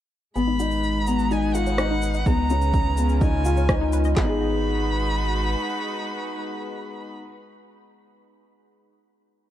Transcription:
0.36 analog synth bass G#1, string section G#3, upright piano B3, synth arpeggio sound G#4, violin B5, shaker
0.47 synth arpeggio sound D#4
0.53 string section B4
0.59 upright piano D#4, synth arpeggio sound F#4, shaker
0.71 string section D#4, shaker
0.83 shaker
0.96 string section F#4
1.07 upright piano B3, violin A#5, shaker
1.19 shaker
1.31 upright piano D#4, violin G#5, shaker
1.55 upright piano F4, synth arpeggio sound G#4, violin F#5, shaker
1.66 synth arpeggio sound C#5, shaker
1.78 upright piano D#4, synth arpeggio sound G#5, cross-stick, shaker
1.91 synth arpeggio sound D#4
2.02 synth arpeggio sound B4, shaker
2.14 synth arpeggio sound D#5, shaker
2.26 analog synth bass C#2, string section C#3, upright piano B3, synth arpeggio sound G#4, violin A#5, kick, shaker
2.38 synth arpeggio sound D#4
2.48 string section C#4, upright piano C#4, synth arpeggio sound F4, shaker
2.62 shaker
2.73 kick, shaker
2.97 upright piano B3, string section F4, shaker
3.09 shaker
3.21 upright piano D#4, violin G#5, kick, shaker
3.45 upright piano F4, synth arpeggio sound G#4, shaker
3.57 synth arpeggio sound C#5, shaker
3.69 upright piano D#4, synth arpeggio sound G#5, kick, cross-stick, shaker
3.81 synth arpeggio sound D#4
3.93 synth arpeggio sound B4, shaker
4.04 synth arpeggio sound D#5, shaker
4.17 analog synth bass G#1, upright piano G#3, string section G#3, synth arpeggio sound G#4, violin B5, kick, snare, clap
4.21 upright piano B3, string section D#4
4.25 upright piano D#4 G#4
4.32 string section F#4
4.39 string section B4

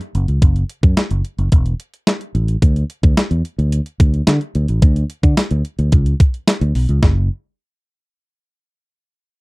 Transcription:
0.01 closed hi-hat
0.15 fingered electric bass F#1, closed hi-hat
0.28 fingered electric bass C#2, closed hi-hat
0.42 fingered electric bass F#1, kick, closed hi-hat
0.56 closed hi-hat
0.70 closed hi-hat
0.83 fingered electric bass F#2, kick, closed hi-hat
0.97 snare, closed hi-hat
1.11 fingered electric bass F#1, closed hi-hat
1.25 closed hi-hat
1.38 fingered electric bass F#1, closed hi-hat
1.52 fingered electric bass E1, kick, closed hi-hat
1.66 closed hi-hat
1.80 closed hi-hat
1.94 closed hi-hat
2.07 snare, closed hi-hat
2.21 closed hi-hat
2.35 fingered electric bass A1, closed hi-hat
2.48 closed hi-hat
2.62 fingered electric bass D2, kick, closed hi-hat
2.76 closed hi-hat
2.90 closed hi-hat
3.03 fingered electric bass D2, kick, closed hi-hat
3.17 snare, closed hi-hat
3.31 fingered electric bass E2, closed hi-hat
3.45 closed hi-hat
3.58 fingered electric bass D2, closed hi-hat
3.72 closed hi-hat
3.86 closed hi-hat
4.00 fingered electric bass D2, kick, closed hi-hat
4.14 closed hi-hat
4.27 fingered electric bass D3, snare, closed hi-hat
4.41 closed hi-hat
4.55 fingered electric bass D2, closed hi-hat
4.68 fingered electric bass A1, closed hi-hat
4.82 fingered electric bass D2, kick, closed hi-hat
4.96 closed hi-hat
5.10 closed hi-hat
5.23 fingered electric bass D3, kick, closed hi-hat
5.37 snare, closed hi-hat, tambourine
5.51 fingered electric bass D2, closed hi-hat
5.65 closed hi-hat
5.79 fingered electric bass D2, closed hi-hat
5.92 fingered electric bass C#2, kick, closed hi-hat
6.06 closed hi-hat
6.20 kick, closed hi-hat
6.34 closed hi-hat
6.48 snare, closed hi-hat, tambourine
6.61 fingered electric bass D2, closed hi-hat
6.75 fingered electric bass B1, open hi-hat
6.89 fingered electric bass C#2, closed hi-hat
7.03 fingered electric bass F#1, kick, snare

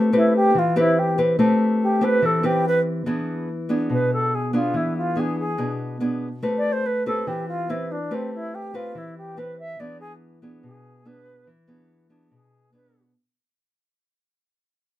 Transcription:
Already playing: nylon-string guitar A3
0.13 nylon-string guitar C4 G4 B4, alto flute E4
0.36 alto flute G4
0.55 nylon-string guitar E3
0.59 alto flute F4
0.76 nylon-string guitar C4 G4 B4, alto flute E4
0.99 alto flute G4
1.18 nylon-string guitar C4 G4 B4
1.39 nylon-string guitar A3 C4 G4 B4
1.83 alto flute G4
2.01 nylon-string guitar C4 G4 B4, alto flute B4
2.22 nylon-string guitar E3, alto flute A4
2.43 nylon-string guitar C4 G4 B4, alto flute G4
2.68 alto flute B4
3.06 nylon-string guitar E3 B3 D4 G#4
3.69 nylon-string guitar B3 D4 G#4
3.90 nylon-string guitar B2, alto flute B4
4.13 alto flute A4
4.35 alto flute G#4
4.53 nylon-string guitar B3 D4 G#4, alto flute F4
4.74 nylon-string guitar E3, alto flute E4
4.97 alto flute F4
5.16 nylon-string guitar B3 D4 G#4
5.20 alto flute G#4
5.39 alto flute G#4
5.58 nylon-string guitar B2 B3 D4 G#4
6.00 nylon-string guitar B3 D4 G#4
6.43 nylon-string guitar A3 C4 G4 B4
6.58 alto flute D5
6.72 alto flute C5
6.86 alto flute B4
7.06 nylon-string guitar C4 G4 B4, alto flute A4
7.27 nylon-string guitar E3, alto flute G4
7.48 alto flute F4
7.69 nylon-string guitar C4 G4 B4, alto flute E4
7.92 alto flute D4
8.11 nylon-string guitar A3 C4 G4 B4, alto flute C4
8.35 alto flute E4
8.55 alto flute G4
8.74 nylon-string guitar C4 G4 B4, alto flute F4
8.95 nylon-string guitar E3, alto flute E4
9.18 alto flute G4
9.37 nylon-string guitar C4 G4 B4, alto flute B4
9.59 alto flute E5
9.79 nylon-string guitar E3 B3 D4 G#4, alto flute D5
10.00 alto flute G#4
10.42 nylon-string guitar B3 D4 G#4
10.63 nylon-string guitar B2, alto flute G#4
11.05 nylon-string guitar B3 D4 G#4, alto flute B4
11.47 nylon-string guitar E3
11.68 nylon-string guitar B3 D4 G#4
12.09 nylon-string guitar B3 D4 G#4
12.31 nylon-string guitar B2, alto flute G#4
12.73 nylon-string guitar B3 D4 G#4, alto flute B4

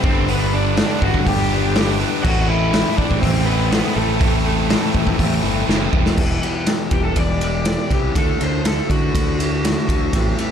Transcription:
0.04 fingered electric bass G1, distorted electric guitar G2 D3 G3 B3 D4, lead electric guitar C4 C5, kick
0.28 distorted electric guitar G2 D3 G3 B3 D4, lead electric guitar B3 B4, open hi-hat
0.52 distorted electric guitar G3 B3 D4, lead electric guitar D4 D5
0.76 distorted electric guitar G2 D3 G3, snare, open hi-hat
0.81 distorted electric guitar B3 D4
1.02 fingered electric bass G1, lead electric guitar F#4 F#5, kick
1.14 fingered electric bass G1, kick
1.26 fingered electric bass G1, distorted electric guitar D3 G3 B3 D4, lead electric guitar G4 G5, kick, open hi-hat
1.52 distorted electric guitar G3 B3 D4
1.75 distorted electric guitar G2 D3 G3 B3 D4, snare, open hi-hat
2.00 distorted electric guitar G3 B3 D4
2.23 fingered electric bass A1, distorted electric guitar A2 E3 A3 C4 E4, lead electric guitar F#4 F#5, kick, crash
2.48 distorted electric guitar A3 C4 E4, lead electric guitar E4 E5
2.71 distorted electric guitar A2 E3 A3 C4, snare, open hi-hat
2.76 distorted electric guitar E4
2.97 fingered electric bass A1, lead electric guitar D4 D5, kick
3.11 fingered electric bass A1, kick
3.20 fingered electric bass A1, distorted electric guitar E3 A3, lead electric guitar C4 C5, kick, open hi-hat
3.25 distorted electric guitar C4 E4
3.46 distorted electric guitar A3 C4 E4, lead electric guitar B3 B4
3.71 distorted electric guitar A2 E3 A3 C4 E4, snare, open hi-hat
3.95 fingered electric bass A1, lead electric guitar A3 A4, distorted electric guitar A3 C4 E4
4.21 distorted electric guitar A2 E3 A3 C4 E4, kick, open hi-hat
4.44 distorted electric guitar A3 C4 E4
4.69 distorted electric guitar A2 E3 A3 C4 E4, snare, open hi-hat
4.95 fingered electric bass A1, kick
5.07 fingered electric bass A1, kick
5.19 fingered electric bass A1, distorted electric guitar E3 A3 C4 E4, kick, open hi-hat
5.43 fingered electric bass G1, distorted electric guitar A3 C4 E4
5.68 fingered electric bass F#1, distorted electric guitar A2 E3 A3 C4 E4, snare
5.92 fingered electric bass E1, distorted electric guitar A3 C4 E4, kick
6.06 snare
6.16 fingered electric bass E1, distorted electric guitar E2 B2 E3, clean electric guitar E2 B2 E3 G3 E4 G4, kick, crash
6.40 clean electric guitar E3 G3 E4 G4, ride
6.65 clean electric guitar E3 G3 E4 G4, snare, ride
6.89 fingered electric bass E1, clean electric guitar E3 G3 E4 G4, kick, ride
6.94 lead electric guitar G4
7.05 lead electric guitar A4
7.16 fingered electric bass E1, lead electric guitar D5, kick, ride
7.39 clean electric guitar E3 G3 E4 G4, ride
7.65 clean electric guitar E2 B2 E3 G3 E4 G4, snare, ride
7.90 fingered electric bass C2, distorted electric guitar E2 B2 E3, lead electric guitar G4, kick, ride
8.13 fingered electric bass D2, clean electric guitar D3 A3 E4 F#4, distorted electric guitar D3 A3, kick, ride
8.18 distorted electric guitar D4, lead electric guitar A4
8.38 fingered electric bass D2, clean electric guitar A3 E4 F#4, ride
8.42 lead electric guitar C5
8.63 clean electric guitar D3 A3 E4 F#4, snare, ride
8.67 lead electric guitar A4
8.89 fingered electric bass D3, clean electric guitar A3 E4 F#4, lead electric guitar F#4, kick, ride
9.14 fingered electric bass D2, kick, ride
9.38 clean electric guitar A3 E4 F#4, ride
9.62 clean electric guitar D3 A3 E4 F#4, snare, ride
9.88 fingered electric bass D2, distorted electric guitar D3 A3 D4, kick, ride
10.13 fingered electric bass A1, distorted electric guitar A2 E3 A3, clean electric guitar A2 E3 G3 C4 G4, kick, ride
10.38 clean electric guitar G3 C4 G4, ride

